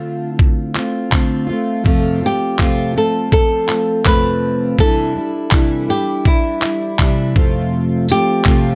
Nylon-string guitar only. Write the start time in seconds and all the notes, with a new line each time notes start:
Already playing: F4
0.31 E4
2.26 G4
2.98 A4
3.33 A4
4.07 B4
4.80 A4
5.90 G4
6.27 E4
8.12 G4